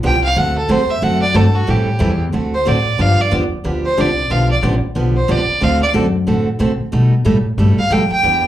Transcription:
0.03 C2 D3 F3 B3 D4 G4 G5
0.24 F5
0.36 D2 D3 A3 C4 F#4 A4 F#5
0.58 A4
0.69 E2 D3 A3 C4 F#4 A4 C5
0.90 E5
1.02 F#2 D3 A3 C4 F#4 A4 F#5
1.22 D5
1.34 G2 D3 A3 C4 F#4 A4
1.55 F#4
1.67 A2 E3 G3 C4 E4 G4 A4
1.99 E2 E3 G3 C4 E4 A4
2.32 D2 D3 A3 C4 F#4 A4
2.54 C5
2.65 A2 D3 A3 C4 F#4 A4 D5
2.98 G2 D3 F3 B3 D4 G4 F5
3.21 D5
3.31 E2 D3 F3 B3 D4 G4
3.53 muted upright bass stroke
3.64 D2 D3 F3 B3 D4 G4
3.85 C5
3.97 C2 D3 F3 B3 D4 G4 D5
4.30 B1 D3 F3 B3 D4 G4 F5
4.51 D5
4.62 A1 D3 F3 B3 D4 G4
4.83 muted upright bass stroke
4.95 B1 D3 F3 B3 D4 G4
5.16 C5
5.28 C2 D3 F3 B3 D4 G4 D5
5.49 muted upright bass stroke
5.61 D2 D3 A3 C4 F#4 A4 F5
5.83 D5
5.93 F#2 D3 A3 C4 F#4 A4
6.27 A2 D3 A3 C4 F#4 A4
6.59 C3 D3 A3 C4 F#4 A4
6.80 muted upright bass stroke
6.92 B2 G3 A3 D#4 A4
7.25 A2 B2 G3 A3 D#4 A4
7.58 G2 B2 G3 A3 D#4 A4
7.78 F5, muted upright bass stroke
7.90 F2 B2 G3 A3 D#4 A4 G5
8.11 G5, muted upright bass stroke
8.23 E2 E3 B3 D4 G4

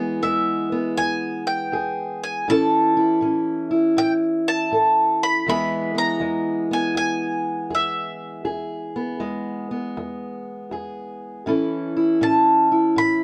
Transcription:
Already playing: E2 E3 G#3 B3 G#4
0.23 E2 G#3 E5
0.72 B3
0.97 E2 G#5
1.47 G5
1.72 E2 G#4
2.24 G#5
2.48 A2 E3 C#4 E4 A4 A5
2.97 E4
3.21 A2 C#4
3.71 E4
3.97 A2 G5
4.48 A5
4.72 A2 A4
5.23 B5
5.46 E2 E3 G#3 B3 G#4 B5
5.95 B3 A#5
6.20 E2 G#3
6.71 B3 G#5
6.95 E2 G#5
7.70 E2 G#4
7.75 E5
8.45 E2 G#4
8.96 B3
9.20 E2 G#3
9.71 B3
9.97 E2
10.71 E2 G#4
11.46 A2 E3 C#4 E4 A4
11.97 E4
12.21 A2 C#4 A5
12.72 E4
12.96 A2 B5

